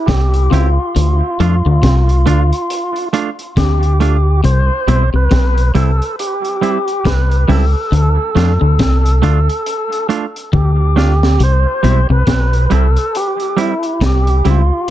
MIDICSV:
0, 0, Header, 1, 6, 480
1, 0, Start_track
1, 0, Key_signature, 0, "major"
1, 0, Tempo, 870827
1, 529, Time_signature, 4, 2, 24, 8
1, 8214, End_track
2, 0, Start_track
2, 0, Title_t, "Tonewheel organ"
2, 0, Program_c, 0, 16
2, 34, Note_on_c, 0, 67, 93
2, 276, Note_on_c, 0, 65, 82
2, 289, Note_off_c, 0, 67, 0
2, 1701, Note_off_c, 0, 65, 0
2, 1972, Note_on_c, 0, 67, 89
2, 2200, Note_off_c, 0, 67, 0
2, 2207, Note_on_c, 0, 67, 93
2, 2431, Note_off_c, 0, 67, 0
2, 2452, Note_on_c, 0, 72, 116
2, 2811, Note_off_c, 0, 72, 0
2, 2842, Note_on_c, 0, 71, 125
2, 3153, Note_off_c, 0, 71, 0
2, 3172, Note_on_c, 0, 69, 94
2, 3394, Note_off_c, 0, 69, 0
2, 3415, Note_on_c, 0, 67, 92
2, 3893, Note_on_c, 0, 71, 103
2, 3907, Note_off_c, 0, 67, 0
2, 4138, Note_off_c, 0, 71, 0
2, 4142, Note_on_c, 0, 69, 89
2, 5553, Note_off_c, 0, 69, 0
2, 5812, Note_on_c, 0, 67, 87
2, 6049, Note_off_c, 0, 67, 0
2, 6056, Note_on_c, 0, 67, 95
2, 6299, Note_off_c, 0, 67, 0
2, 6302, Note_on_c, 0, 72, 111
2, 6655, Note_off_c, 0, 72, 0
2, 6680, Note_on_c, 0, 71, 121
2, 6973, Note_off_c, 0, 71, 0
2, 6979, Note_on_c, 0, 71, 73
2, 7009, Note_off_c, 0, 71, 0
2, 7020, Note_on_c, 0, 69, 94
2, 7257, Note_on_c, 0, 67, 98
2, 7260, Note_off_c, 0, 69, 0
2, 7499, Note_off_c, 0, 67, 0
2, 7502, Note_on_c, 0, 64, 89
2, 7741, Note_off_c, 0, 64, 0
2, 7750, Note_on_c, 0, 67, 96
2, 7985, Note_off_c, 0, 67, 0
2, 7993, Note_on_c, 0, 65, 88
2, 8214, Note_off_c, 0, 65, 0
2, 8214, End_track
3, 0, Start_track
3, 0, Title_t, "Clean electric guitar"
3, 0, Program_c, 1, 27
3, 288, Note_on_c, 1, 60, 76
3, 294, Note_on_c, 1, 64, 90
3, 298, Note_on_c, 1, 67, 89
3, 372, Note_off_c, 1, 60, 0
3, 374, Note_off_c, 1, 64, 0
3, 376, Note_off_c, 1, 67, 0
3, 772, Note_on_c, 1, 57, 79
3, 776, Note_on_c, 1, 62, 90
3, 778, Note_on_c, 1, 65, 101
3, 853, Note_off_c, 1, 57, 0
3, 855, Note_off_c, 1, 62, 0
3, 857, Note_off_c, 1, 65, 0
3, 1245, Note_on_c, 1, 57, 87
3, 1250, Note_on_c, 1, 62, 95
3, 1254, Note_on_c, 1, 65, 100
3, 1330, Note_off_c, 1, 57, 0
3, 1333, Note_off_c, 1, 62, 0
3, 1335, Note_off_c, 1, 65, 0
3, 1725, Note_on_c, 1, 57, 83
3, 1729, Note_on_c, 1, 62, 91
3, 1732, Note_on_c, 1, 65, 93
3, 1810, Note_off_c, 1, 57, 0
3, 1812, Note_off_c, 1, 62, 0
3, 1814, Note_off_c, 1, 65, 0
3, 2206, Note_on_c, 1, 57, 92
3, 2212, Note_on_c, 1, 62, 90
3, 2213, Note_on_c, 1, 65, 96
3, 2291, Note_off_c, 1, 57, 0
3, 2294, Note_off_c, 1, 62, 0
3, 2294, Note_off_c, 1, 65, 0
3, 2687, Note_on_c, 1, 55, 89
3, 2692, Note_on_c, 1, 60, 101
3, 2694, Note_on_c, 1, 64, 90
3, 2772, Note_off_c, 1, 55, 0
3, 2774, Note_off_c, 1, 60, 0
3, 2775, Note_off_c, 1, 64, 0
3, 3167, Note_on_c, 1, 55, 93
3, 3171, Note_on_c, 1, 60, 88
3, 3174, Note_on_c, 1, 64, 105
3, 3251, Note_off_c, 1, 55, 0
3, 3253, Note_off_c, 1, 60, 0
3, 3255, Note_off_c, 1, 64, 0
3, 3646, Note_on_c, 1, 55, 75
3, 3651, Note_on_c, 1, 60, 77
3, 3655, Note_on_c, 1, 64, 91
3, 3731, Note_off_c, 1, 55, 0
3, 3733, Note_off_c, 1, 60, 0
3, 3735, Note_off_c, 1, 64, 0
3, 4123, Note_on_c, 1, 55, 86
3, 4130, Note_on_c, 1, 60, 92
3, 4131, Note_on_c, 1, 64, 94
3, 4209, Note_off_c, 1, 55, 0
3, 4213, Note_off_c, 1, 60, 0
3, 4213, Note_off_c, 1, 64, 0
3, 4604, Note_on_c, 1, 57, 85
3, 4612, Note_on_c, 1, 62, 80
3, 4613, Note_on_c, 1, 65, 88
3, 4690, Note_off_c, 1, 57, 0
3, 4694, Note_off_c, 1, 62, 0
3, 4694, Note_off_c, 1, 65, 0
3, 5083, Note_on_c, 1, 57, 87
3, 5089, Note_on_c, 1, 62, 93
3, 5091, Note_on_c, 1, 65, 107
3, 5169, Note_off_c, 1, 57, 0
3, 5172, Note_off_c, 1, 62, 0
3, 5173, Note_off_c, 1, 65, 0
3, 5561, Note_on_c, 1, 57, 85
3, 5563, Note_on_c, 1, 62, 78
3, 5567, Note_on_c, 1, 65, 91
3, 5648, Note_off_c, 1, 57, 0
3, 5649, Note_off_c, 1, 62, 0
3, 5651, Note_off_c, 1, 65, 0
3, 6042, Note_on_c, 1, 57, 78
3, 6044, Note_on_c, 1, 62, 84
3, 6051, Note_on_c, 1, 65, 91
3, 6128, Note_off_c, 1, 57, 0
3, 6129, Note_off_c, 1, 62, 0
3, 6133, Note_off_c, 1, 65, 0
3, 6521, Note_on_c, 1, 55, 91
3, 6525, Note_on_c, 1, 60, 90
3, 6528, Note_on_c, 1, 64, 99
3, 6607, Note_off_c, 1, 55, 0
3, 6609, Note_off_c, 1, 60, 0
3, 6611, Note_off_c, 1, 64, 0
3, 7001, Note_on_c, 1, 55, 87
3, 7007, Note_on_c, 1, 60, 98
3, 7009, Note_on_c, 1, 64, 91
3, 7087, Note_off_c, 1, 55, 0
3, 7090, Note_off_c, 1, 60, 0
3, 7091, Note_off_c, 1, 64, 0
3, 7478, Note_on_c, 1, 55, 82
3, 7481, Note_on_c, 1, 60, 84
3, 7488, Note_on_c, 1, 64, 91
3, 7565, Note_off_c, 1, 55, 0
3, 7567, Note_off_c, 1, 60, 0
3, 7570, Note_off_c, 1, 64, 0
3, 7965, Note_on_c, 1, 55, 90
3, 7972, Note_on_c, 1, 60, 87
3, 7975, Note_on_c, 1, 64, 92
3, 8048, Note_off_c, 1, 55, 0
3, 8052, Note_off_c, 1, 60, 0
3, 8054, Note_off_c, 1, 64, 0
3, 8214, End_track
4, 0, Start_track
4, 0, Title_t, "Clean electric guitar"
4, 0, Program_c, 2, 27
4, 47, Note_on_c, 2, 48, 84
4, 191, Note_off_c, 2, 48, 0
4, 282, Note_on_c, 2, 49, 87
4, 369, Note_off_c, 2, 49, 0
4, 529, Note_on_c, 2, 50, 92
4, 614, Note_off_c, 2, 50, 0
4, 773, Note_on_c, 2, 53, 73
4, 857, Note_off_c, 2, 53, 0
4, 917, Note_on_c, 2, 50, 78
4, 974, Note_off_c, 2, 50, 0
4, 1008, Note_on_c, 2, 48, 88
4, 1152, Note_off_c, 2, 48, 0
4, 1249, Note_on_c, 2, 50, 78
4, 1334, Note_off_c, 2, 50, 0
4, 1970, Note_on_c, 2, 50, 79
4, 2114, Note_off_c, 2, 50, 0
4, 2446, Note_on_c, 2, 48, 93
4, 2532, Note_off_c, 2, 48, 0
4, 2691, Note_on_c, 2, 47, 79
4, 2776, Note_off_c, 2, 47, 0
4, 2831, Note_on_c, 2, 48, 81
4, 2890, Note_off_c, 2, 48, 0
4, 2926, Note_on_c, 2, 47, 87
4, 3071, Note_off_c, 2, 47, 0
4, 3170, Note_on_c, 2, 48, 81
4, 3255, Note_off_c, 2, 48, 0
4, 3890, Note_on_c, 2, 48, 80
4, 4034, Note_off_c, 2, 48, 0
4, 4126, Note_on_c, 2, 49, 85
4, 4212, Note_off_c, 2, 49, 0
4, 4366, Note_on_c, 2, 50, 87
4, 4452, Note_off_c, 2, 50, 0
4, 4608, Note_on_c, 2, 53, 72
4, 4694, Note_off_c, 2, 53, 0
4, 4746, Note_on_c, 2, 50, 78
4, 4806, Note_off_c, 2, 50, 0
4, 4851, Note_on_c, 2, 48, 87
4, 4994, Note_off_c, 2, 48, 0
4, 5087, Note_on_c, 2, 50, 75
4, 5173, Note_off_c, 2, 50, 0
4, 5804, Note_on_c, 2, 50, 80
4, 5949, Note_off_c, 2, 50, 0
4, 6288, Note_on_c, 2, 48, 91
4, 6373, Note_off_c, 2, 48, 0
4, 6530, Note_on_c, 2, 47, 80
4, 6615, Note_off_c, 2, 47, 0
4, 6671, Note_on_c, 2, 48, 81
4, 6729, Note_off_c, 2, 48, 0
4, 6764, Note_on_c, 2, 47, 80
4, 6909, Note_off_c, 2, 47, 0
4, 7010, Note_on_c, 2, 48, 80
4, 7095, Note_off_c, 2, 48, 0
4, 7725, Note_on_c, 2, 48, 90
4, 7869, Note_off_c, 2, 48, 0
4, 7968, Note_on_c, 2, 49, 82
4, 8053, Note_off_c, 2, 49, 0
4, 8214, End_track
5, 0, Start_track
5, 0, Title_t, "Fingered electric bass"
5, 0, Program_c, 3, 33
5, 46, Note_on_c, 3, 36, 98
5, 276, Note_off_c, 3, 36, 0
5, 289, Note_on_c, 3, 37, 91
5, 424, Note_off_c, 3, 37, 0
5, 531, Note_on_c, 3, 38, 102
5, 665, Note_off_c, 3, 38, 0
5, 771, Note_on_c, 3, 41, 89
5, 905, Note_off_c, 3, 41, 0
5, 913, Note_on_c, 3, 38, 95
5, 1005, Note_off_c, 3, 38, 0
5, 1012, Note_on_c, 3, 36, 91
5, 1239, Note_off_c, 3, 36, 0
5, 1247, Note_on_c, 3, 38, 82
5, 1384, Note_off_c, 3, 38, 0
5, 1969, Note_on_c, 3, 38, 91
5, 2427, Note_off_c, 3, 38, 0
5, 2450, Note_on_c, 3, 36, 106
5, 2585, Note_off_c, 3, 36, 0
5, 2688, Note_on_c, 3, 35, 102
5, 2824, Note_off_c, 3, 35, 0
5, 2830, Note_on_c, 3, 36, 91
5, 2924, Note_off_c, 3, 36, 0
5, 2932, Note_on_c, 3, 35, 97
5, 3159, Note_off_c, 3, 35, 0
5, 3170, Note_on_c, 3, 36, 90
5, 3305, Note_off_c, 3, 36, 0
5, 3889, Note_on_c, 3, 36, 94
5, 4117, Note_off_c, 3, 36, 0
5, 4129, Note_on_c, 3, 37, 91
5, 4264, Note_off_c, 3, 37, 0
5, 4366, Note_on_c, 3, 38, 106
5, 4503, Note_off_c, 3, 38, 0
5, 4607, Note_on_c, 3, 41, 90
5, 4743, Note_off_c, 3, 41, 0
5, 4750, Note_on_c, 3, 38, 96
5, 4844, Note_off_c, 3, 38, 0
5, 4849, Note_on_c, 3, 36, 91
5, 5077, Note_off_c, 3, 36, 0
5, 5083, Note_on_c, 3, 38, 84
5, 5221, Note_off_c, 3, 38, 0
5, 5808, Note_on_c, 3, 38, 92
5, 6266, Note_off_c, 3, 38, 0
5, 6283, Note_on_c, 3, 36, 99
5, 6421, Note_off_c, 3, 36, 0
5, 6526, Note_on_c, 3, 35, 95
5, 6662, Note_off_c, 3, 35, 0
5, 6667, Note_on_c, 3, 36, 92
5, 6762, Note_off_c, 3, 36, 0
5, 6766, Note_on_c, 3, 35, 90
5, 6995, Note_off_c, 3, 35, 0
5, 7009, Note_on_c, 3, 36, 83
5, 7143, Note_off_c, 3, 36, 0
5, 7723, Note_on_c, 3, 36, 99
5, 7953, Note_off_c, 3, 36, 0
5, 7969, Note_on_c, 3, 37, 92
5, 8103, Note_off_c, 3, 37, 0
5, 8214, End_track
6, 0, Start_track
6, 0, Title_t, "Drums"
6, 45, Note_on_c, 9, 36, 105
6, 47, Note_on_c, 9, 42, 75
6, 50, Note_on_c, 9, 38, 111
6, 100, Note_off_c, 9, 36, 0
6, 102, Note_off_c, 9, 42, 0
6, 106, Note_off_c, 9, 38, 0
6, 186, Note_on_c, 9, 42, 56
6, 241, Note_off_c, 9, 42, 0
6, 291, Note_on_c, 9, 42, 72
6, 346, Note_off_c, 9, 42, 0
6, 529, Note_on_c, 9, 42, 92
6, 585, Note_off_c, 9, 42, 0
6, 773, Note_on_c, 9, 42, 71
6, 828, Note_off_c, 9, 42, 0
6, 1009, Note_on_c, 9, 42, 85
6, 1010, Note_on_c, 9, 36, 116
6, 1015, Note_on_c, 9, 38, 112
6, 1064, Note_off_c, 9, 42, 0
6, 1065, Note_off_c, 9, 36, 0
6, 1070, Note_off_c, 9, 38, 0
6, 1152, Note_on_c, 9, 42, 59
6, 1207, Note_off_c, 9, 42, 0
6, 1249, Note_on_c, 9, 42, 62
6, 1304, Note_off_c, 9, 42, 0
6, 1392, Note_on_c, 9, 42, 61
6, 1447, Note_off_c, 9, 42, 0
6, 1489, Note_on_c, 9, 42, 97
6, 1544, Note_off_c, 9, 42, 0
6, 1631, Note_on_c, 9, 42, 52
6, 1686, Note_off_c, 9, 42, 0
6, 1728, Note_on_c, 9, 42, 72
6, 1783, Note_off_c, 9, 42, 0
6, 1868, Note_on_c, 9, 42, 51
6, 1923, Note_off_c, 9, 42, 0
6, 1967, Note_on_c, 9, 36, 114
6, 1968, Note_on_c, 9, 42, 83
6, 1972, Note_on_c, 9, 38, 121
6, 2022, Note_off_c, 9, 36, 0
6, 2023, Note_off_c, 9, 42, 0
6, 2027, Note_off_c, 9, 38, 0
6, 2110, Note_on_c, 9, 42, 55
6, 2165, Note_off_c, 9, 42, 0
6, 2209, Note_on_c, 9, 42, 75
6, 2264, Note_off_c, 9, 42, 0
6, 2449, Note_on_c, 9, 42, 98
6, 2504, Note_off_c, 9, 42, 0
6, 2690, Note_on_c, 9, 42, 69
6, 2745, Note_off_c, 9, 42, 0
6, 2926, Note_on_c, 9, 42, 89
6, 2930, Note_on_c, 9, 36, 122
6, 2932, Note_on_c, 9, 38, 109
6, 2981, Note_off_c, 9, 42, 0
6, 2985, Note_off_c, 9, 36, 0
6, 2987, Note_off_c, 9, 38, 0
6, 3073, Note_on_c, 9, 42, 61
6, 3128, Note_off_c, 9, 42, 0
6, 3170, Note_on_c, 9, 42, 62
6, 3225, Note_off_c, 9, 42, 0
6, 3318, Note_on_c, 9, 42, 55
6, 3373, Note_off_c, 9, 42, 0
6, 3413, Note_on_c, 9, 42, 100
6, 3469, Note_off_c, 9, 42, 0
6, 3553, Note_on_c, 9, 42, 53
6, 3608, Note_off_c, 9, 42, 0
6, 3654, Note_on_c, 9, 42, 69
6, 3709, Note_off_c, 9, 42, 0
6, 3790, Note_on_c, 9, 42, 48
6, 3846, Note_off_c, 9, 42, 0
6, 3888, Note_on_c, 9, 36, 108
6, 3892, Note_on_c, 9, 42, 81
6, 3895, Note_on_c, 9, 38, 120
6, 3943, Note_off_c, 9, 36, 0
6, 3947, Note_off_c, 9, 42, 0
6, 3951, Note_off_c, 9, 38, 0
6, 4032, Note_on_c, 9, 42, 52
6, 4087, Note_off_c, 9, 42, 0
6, 4131, Note_on_c, 9, 46, 55
6, 4186, Note_off_c, 9, 46, 0
6, 4371, Note_on_c, 9, 42, 90
6, 4426, Note_off_c, 9, 42, 0
6, 4611, Note_on_c, 9, 42, 71
6, 4615, Note_on_c, 9, 38, 78
6, 4666, Note_off_c, 9, 42, 0
6, 4670, Note_off_c, 9, 38, 0
6, 4846, Note_on_c, 9, 42, 94
6, 4848, Note_on_c, 9, 36, 119
6, 4852, Note_on_c, 9, 38, 110
6, 4901, Note_off_c, 9, 42, 0
6, 4903, Note_off_c, 9, 36, 0
6, 4908, Note_off_c, 9, 38, 0
6, 4992, Note_on_c, 9, 42, 62
6, 5047, Note_off_c, 9, 42, 0
6, 5089, Note_on_c, 9, 42, 61
6, 5144, Note_off_c, 9, 42, 0
6, 5234, Note_on_c, 9, 42, 60
6, 5289, Note_off_c, 9, 42, 0
6, 5327, Note_on_c, 9, 42, 94
6, 5382, Note_off_c, 9, 42, 0
6, 5470, Note_on_c, 9, 42, 54
6, 5525, Note_off_c, 9, 42, 0
6, 5567, Note_on_c, 9, 42, 69
6, 5622, Note_off_c, 9, 42, 0
6, 5712, Note_on_c, 9, 42, 51
6, 5767, Note_off_c, 9, 42, 0
6, 5806, Note_on_c, 9, 36, 109
6, 5861, Note_off_c, 9, 36, 0
6, 6050, Note_on_c, 9, 38, 93
6, 6105, Note_off_c, 9, 38, 0
6, 6192, Note_on_c, 9, 38, 100
6, 6247, Note_off_c, 9, 38, 0
6, 6284, Note_on_c, 9, 42, 97
6, 6339, Note_off_c, 9, 42, 0
6, 6527, Note_on_c, 9, 42, 70
6, 6582, Note_off_c, 9, 42, 0
6, 6762, Note_on_c, 9, 42, 84
6, 6766, Note_on_c, 9, 36, 119
6, 6768, Note_on_c, 9, 38, 110
6, 6817, Note_off_c, 9, 42, 0
6, 6821, Note_off_c, 9, 36, 0
6, 6823, Note_off_c, 9, 38, 0
6, 6908, Note_on_c, 9, 42, 60
6, 6963, Note_off_c, 9, 42, 0
6, 7004, Note_on_c, 9, 42, 60
6, 7059, Note_off_c, 9, 42, 0
6, 7146, Note_on_c, 9, 42, 55
6, 7201, Note_off_c, 9, 42, 0
6, 7248, Note_on_c, 9, 42, 105
6, 7303, Note_off_c, 9, 42, 0
6, 7385, Note_on_c, 9, 42, 49
6, 7440, Note_off_c, 9, 42, 0
6, 7485, Note_on_c, 9, 42, 67
6, 7540, Note_off_c, 9, 42, 0
6, 7623, Note_on_c, 9, 42, 51
6, 7678, Note_off_c, 9, 42, 0
6, 7724, Note_on_c, 9, 36, 102
6, 7724, Note_on_c, 9, 42, 79
6, 7728, Note_on_c, 9, 38, 111
6, 7779, Note_off_c, 9, 36, 0
6, 7780, Note_off_c, 9, 42, 0
6, 7783, Note_off_c, 9, 38, 0
6, 7867, Note_on_c, 9, 42, 57
6, 7922, Note_off_c, 9, 42, 0
6, 7966, Note_on_c, 9, 42, 77
6, 8021, Note_off_c, 9, 42, 0
6, 8214, End_track
0, 0, End_of_file